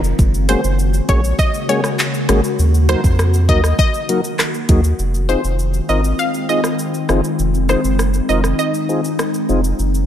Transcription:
Already playing: sub bass F1, ambient pad D#3 G#3 C4 F4
0.04 shaker
0.19 sub bass F#1, ambient pad C#3 A#3 F#4, kick, shaker
0.34 shaker
0.49 tonewheel organ G#3 A#3 C#4 F#4 G#4, synth pluck C5, closed hi-hat, shaker
0.64 sub bass F#1, shaker
0.79 shaker
0.94 shaker
1.09 sub bass A#1, tonewheel organ G#3 A#3 C#4 F#4 G#4, synth pluck C#5, kick, closed hi-hat, shaker
1.24 shaker
1.39 synth pluck D#5, kick, shaker
1.54 shaker
1.69 tonewheel organ G#3 A#3 C#4 F#4 G#4, synth pluck C#5, closed hi-hat, shaker
1.84 cross-stick, shaker
1.99 clap, shaker
2.14 shaker
2.29 sub bass G#1, tonewheel organ G#3 A#3 C#4 F#4 G#4, cross-stick, closed hi-hat, shaker
2.44 shaker
2.59 sub bass D#2, ambient pad D#3, shaker
2.74 shaker
2.89 tonewheel organ F#3 A#3 D#4 F#4 A#4, synth pluck C5, cross-stick, closed hi-hat, shaker
3.04 sub bass F2, kick, shaker
3.19 cross-stick, shaker
3.34 shaker
3.49 sub bass D#2, tonewheel organ F#3 A#3 D#4 F#4 A#4, synth pluck D#5, kick, closed hi-hat, shaker
3.64 cross-stick, shaker
3.79 synth pluck D#5, kick, shaker
3.94 shaker
4.09 tonewheel organ F#3 A#3 D#4 F#4 A#4, closed hi-hat, shaker
4.24 shaker
4.39 cross-stick, clap, shaker
4.54 shaker
4.69 sub bass D#2, tonewheel organ F#3 A#3 D#4 F#4 G#4, kick, closed hi-hat, shaker
4.84 shaker
4.99 sub bass F1, ambient pad D#3 G#3 C4 F4, shaker
5.14 shaker
5.29 tonewheel organ C4 D#4 F4 G#4, synth pluck C5, shaker
5.44 sub bass F1, shaker
5.59 shaker
5.74 shaker
5.89 sub bass G#1, tonewheel organ C4 D#4 F4 A#4, synth pluck D#5, shaker
6.04 shaker
6.19 synth pluck F5, shaker
6.34 shaker
6.49 tonewheel organ C4 D#4 F4 G#4, synth pluck D#5, shaker
6.64 cross-stick, shaker
6.79 shaker
6.94 shaker
7.09 sub bass F#1, tonewheel organ C4 D#4 F4 G#4, cross-stick, shaker
7.24 shaker
7.39 sub bass F1, ambient pad D#4, shaker
7.54 shaker
7.69 tonewheel organ C4 D#4 F4 G#4, synth pluck C5, cross-stick, shaker
7.84 sub bass F#1, shaker
7.99 cross-stick, shaker
8.14 shaker
8.29 sub bass F1, tonewheel organ C4 D#4 F4 A#4, synth pluck D#5, shaker
8.44 cross-stick, shaker
8.59 synth pluck D#5, shaker
8.74 shaker
8.89 tonewheel organ C4 D#4 F4 G#4, shaker
9.04 shaker
9.19 cross-stick, shaker
9.34 shaker
9.49 sub bass F1, tonewheel organ C4 D#4 F4 G#4, shaker
9.64 shaker
9.79 sub bass F#1, ambient pad C#3 G#3 A#3 F#4, shaker
9.94 shaker

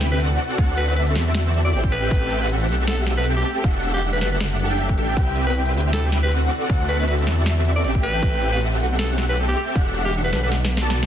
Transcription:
Already playing: detuned saw bass D2, analog synth pad C3 E4 B4, supersaw synth C4 G4 B4 E5 G5, digital synth lead G5
0.01 snare, closed hi-hat
0.12 alto saxophone B4
0.20 supersaw synth C4 F#4 A4 D5 F#5, digital synth lead F#5, closed hi-hat
0.39 analog synth pad D3 C4 F#4, closed hi-hat
0.58 detuned saw bass D2, supersaw synth C4 F#4 A4 D5 F#5, digital synth lead F#5, kick, closed hi-hat
0.77 alto saxophone B4, closed hi-hat
0.88 supersaw synth C4 F#4 A4 D5 E5, alto saxophone B4, digital synth lead E5
0.96 alto saxophone B4, closed hi-hat
1.07 closed hi-hat
1.16 detuned saw bass E2, snare, closed hi-hat
1.19 closed hi-hat
1.22 closed hi-hat
1.35 snare, closed hi-hat
1.54 closed hi-hat
1.64 alto saxophone D5
1.73 detuned saw bass A1, supersaw synth C4 G4 A4 E5 G5, alto saxophone D5, digital synth lead G5, closed hi-hat
1.84 kick
1.92 analog synth pad A3 C4 G4, alto saxophone B4, closed hi-hat
2.11 detuned saw bass A1, supersaw synth C4 G4 A4 E5 G5, digital synth lead G5, kick, closed hi-hat
2.30 closed hi-hat
2.41 supersaw synth C4 G4 A4 E5 F#5, alto saxophone B4, digital synth lead F#5
2.49 closed hi-hat
2.60 closed hi-hat
2.68 detuned saw bass B1, closed hi-hat
2.72 closed hi-hat
2.75 closed hi-hat
2.88 alto saxophone A4, snare, closed hi-hat
3.07 snare, closed hi-hat
3.17 alto saxophone B4
3.26 supersaw synth C4 G4 A4 E5 G5, digital synth lead G5, closed hi-hat
3.36 alto saxophone G4
3.45 alto saxophone G4, closed hi-hat
3.64 detuned saw bass E1, analog synth pad D3 G3 F#5, supersaw synth D4 G4 A4 E5 F#5, digital synth lead F#5, kick, closed hi-hat
3.83 closed hi-hat
3.94 supersaw synth D4 G4 A4 E5 F#5, alto saxophone G4, digital synth lead F#5
4.02 closed hi-hat
4.13 alto saxophone B4, closed hi-hat
4.21 detuned saw bass F#1, alto saxophone B4, snare, closed hi-hat
4.25 closed hi-hat
4.28 closed hi-hat
4.32 alto saxophone B4
4.40 snare, closed hi-hat
4.60 closed hi-hat
4.70 supersaw synth D4 G4 A4 E5 G5, digital synth lead G5
4.79 closed hi-hat
4.89 kick
4.98 detuned saw bass A1, supersaw synth D4 G4 A4 E5 G5, digital synth lead G5, closed hi-hat
5.17 detuned saw bass C2, analog synth pad C3 E4 B4, supersaw synth C4 G4 B4 E5 G5, digital synth lead G5, kick, closed hi-hat
5.36 closed hi-hat
5.46 supersaw synth C4 G4 B4 E5 G5, alto saxophone B4, digital synth lead G5
5.55 closed hi-hat
5.66 closed hi-hat
5.74 detuned saw bass D2, closed hi-hat
5.78 closed hi-hat
5.80 closed hi-hat
5.93 alto saxophone A4, snare, closed hi-hat
6.12 snare, closed hi-hat
6.23 alto saxophone B4
6.31 supersaw synth C4 F#4 A4 D5 F#5, digital synth lead F#5, closed hi-hat
6.50 analog synth pad D3 C4 F#4, closed hi-hat
6.70 detuned saw bass D2, supersaw synth C4 F#4 A4 D5 F#5, digital synth lead F#5, kick, closed hi-hat
6.89 alto saxophone B4, closed hi-hat
6.99 supersaw synth C4 F#4 A4 D5 E5, alto saxophone B4, digital synth lead E5
7.08 alto saxophone B4, closed hi-hat
7.19 closed hi-hat
7.27 detuned saw bass E2, snare, closed hi-hat
7.30 closed hi-hat
7.33 closed hi-hat
7.46 snare, closed hi-hat
7.65 closed hi-hat
7.76 alto saxophone D5
7.84 detuned saw bass A1, supersaw synth C4 G4 A4 E5 G5, alto saxophone D5, digital synth lead G5, closed hi-hat
7.95 kick
8.03 analog synth pad A3 C4 G4, alto saxophone B4, closed hi-hat
8.22 detuned saw bass A1, supersaw synth C4 G4 A4 E5 G5, digital synth lead G5, kick, closed hi-hat
8.42 closed hi-hat
8.52 supersaw synth C4 G4 A4 E5 F#5, alto saxophone B4, digital synth lead F#5
8.61 closed hi-hat
8.71 closed hi-hat
8.80 detuned saw bass B1, closed hi-hat
8.83 closed hi-hat
8.86 closed hi-hat
8.99 alto saxophone A4, snare, closed hi-hat
9.18 snare, closed hi-hat
9.29 alto saxophone B4
9.37 supersaw synth C4 G4 A4 E5 G5, digital synth lead G5, closed hi-hat
9.48 alto saxophone G4
9.56 alto saxophone G4, closed hi-hat
9.75 detuned saw bass E1, analog synth pad D3 G3 F#5, supersaw synth D4 G4 A4 E5 F#5, digital synth lead F#5, kick, closed hi-hat
9.95 closed hi-hat
10.05 supersaw synth D4 G4 A4 E5 F#5, alto saxophone G4, digital synth lead F#5
10.14 closed hi-hat
10.24 alto saxophone B4, closed hi-hat
10.33 detuned saw bass B1, alto saxophone B4, snare, closed hi-hat
10.36 closed hi-hat
10.39 closed hi-hat
10.43 alto saxophone B4
10.52 analog synth pad B3 A4, snare, closed hi-hat
10.65 snare
10.71 closed hi-hat
10.77 snare
10.81 supersaw synth B3 F#4 A4 D5 A5, digital synth lead A5
10.90 snare, closed hi-hat
11.03 snare

